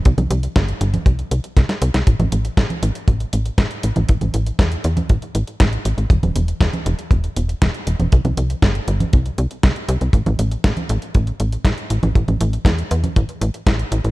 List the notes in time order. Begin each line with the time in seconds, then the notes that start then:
0.05 C2, kick, closed hi-hat
0.18 C2, closed hi-hat, high conga
0.30 C2, closed hi-hat
0.43 closed hi-hat
0.56 G1, kick, snare, closed hi-hat
0.68 closed hi-hat
0.81 G1, closed hi-hat
0.94 closed hi-hat, high conga
1.06 C2, kick, closed hi-hat
1.19 closed hi-hat
1.31 C2, closed hi-hat
1.44 closed hi-hat
1.57 C2, kick, snare, closed hi-hat
1.69 snare, closed hi-hat
1.82 C2, closed hi-hat
1.94 C2, snare, closed hi-hat
2.07 A1, kick, closed hi-hat
2.19 A1, closed hi-hat, high conga
2.32 A1, closed hi-hat
2.45 closed hi-hat
2.57 A1, kick, snare, closed hi-hat
2.70 closed hi-hat, high conga
2.83 A1, closed hi-hat
2.95 closed hi-hat
3.08 A1, kick, closed hi-hat
3.20 closed hi-hat
3.33 A1, closed hi-hat
3.46 closed hi-hat
3.58 A1, kick, snare, closed hi-hat
3.71 closed hi-hat
3.83 A1, closed hi-hat
3.96 A1, closed hi-hat, high conga
4.09 A1, kick, closed hi-hat
4.21 A1, closed hi-hat, high conga
4.34 A1, closed hi-hat
4.46 closed hi-hat
4.59 E2, kick, snare, closed hi-hat
4.72 closed hi-hat
4.84 E2, closed hi-hat
4.97 closed hi-hat, high conga
5.09 A1, kick, closed hi-hat
5.22 closed hi-hat
5.35 A1, closed hi-hat
5.47 closed hi-hat
5.60 A1, kick, snare, closed hi-hat
5.73 closed hi-hat
5.85 A1, closed hi-hat
5.98 A1, closed hi-hat
6.10 E1, kick, closed hi-hat
6.23 E1, closed hi-hat, high conga
6.36 E1, closed hi-hat
6.48 closed hi-hat
6.61 E1, kick, snare, closed hi-hat
6.73 closed hi-hat, high conga
6.86 E1, closed hi-hat
6.99 closed hi-hat
7.11 E1, kick, closed hi-hat
7.24 closed hi-hat
7.36 E1, closed hi-hat
7.49 closed hi-hat
7.62 E1, kick, snare, closed hi-hat
7.74 closed hi-hat
7.87 E1, closed hi-hat
8.00 E1, closed hi-hat, high conga
8.12 C2, kick, closed hi-hat
8.25 C2, closed hi-hat, high conga
8.37 C2, closed hi-hat
8.50 closed hi-hat
8.62 G1, kick, snare, closed hi-hat
8.75 closed hi-hat
8.88 G1, closed hi-hat
9.00 closed hi-hat, high conga
9.13 C2, kick, closed hi-hat
9.26 closed hi-hat
9.38 C2, closed hi-hat
9.51 closed hi-hat
9.63 C2, kick, snare, closed hi-hat
9.76 closed hi-hat
9.89 C2, closed hi-hat
10.01 C2, closed hi-hat
10.13 A1, kick, closed hi-hat
10.26 A1, closed hi-hat, high conga
10.39 A1, closed hi-hat
10.52 closed hi-hat
10.64 A1, kick, snare, closed hi-hat
10.77 closed hi-hat, high conga
10.89 A1, closed hi-hat
11.02 closed hi-hat
11.15 A1, kick, closed hi-hat
11.27 closed hi-hat
11.40 A1, closed hi-hat
11.52 closed hi-hat
11.65 A1, kick, snare, closed hi-hat
11.78 closed hi-hat
11.90 A1, closed hi-hat
12.03 A1, closed hi-hat, high conga
12.15 A1, kick, closed hi-hat
12.28 A1, closed hi-hat, high conga
12.41 A1, closed hi-hat
12.53 closed hi-hat
12.65 E2, kick, snare, closed hi-hat
12.78 closed hi-hat
12.91 E2, closed hi-hat
13.04 closed hi-hat, high conga
13.16 A1, kick, closed hi-hat
13.29 closed hi-hat
13.41 A1, closed hi-hat
13.54 closed hi-hat
13.67 A1, kick, snare, closed hi-hat
13.79 closed hi-hat
13.92 A1, closed hi-hat
14.04 A1, closed hi-hat